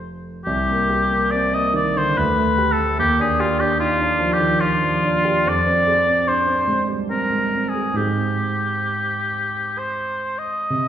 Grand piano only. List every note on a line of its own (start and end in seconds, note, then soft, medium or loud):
0.00 0.41 F1 soft
0.00 0.39 F2 medium
0.00 0.40 F3 soft
0.00 0.40 A3 soft
0.00 0.41 D#4 soft
0.00 0.41 G4 soft
0.46 2.13 C2 medium
0.69 1.02 A#3 medium
0.90 1.24 G4 medium
1.11 1.45 A#3 medium
1.32 1.53 C4 soft
1.53 1.87 A#3 soft
1.74 2.08 D#3 medium
1.95 2.16 D3 soft
2.17 2.97 D2 medium
2.38 2.70 A3 medium
2.58 2.91 G4 medium
2.80 3.00 A3 medium
2.99 5.43 D#2 medium
3.19 3.52 D4 medium
3.40 3.72 G4 medium
3.60 3.92 D4 medium
3.79 3.99 D#4 soft
4.01 4.32 D4 medium
4.20 4.52 F3 medium
4.40 4.61 D#3 soft
4.60 4.94 D4 medium
4.82 5.17 F3 medium
5.03 5.38 D4 medium
5.25 5.47 G4 medium
5.45 7.93 F2 medium
5.66 5.99 C4 medium
5.87 6.20 G#4 medium
6.06 6.40 C4 soft
6.26 6.48 D4 soft
6.47 6.81 C4 soft
6.67 7.01 G#3 soft
6.88 7.10 G3 soft
7.09 7.44 C4 soft
7.30 7.65 G#3 soft
7.53 7.89 C4 soft
7.75 7.96 G#4 soft
7.93 10.64 G#2 soft
7.93 10.64 G#3 soft
7.93 10.64 C4 soft
7.93 10.65 D#4 soft
7.97 10.66 G#4 soft
10.70 10.88 C3 soft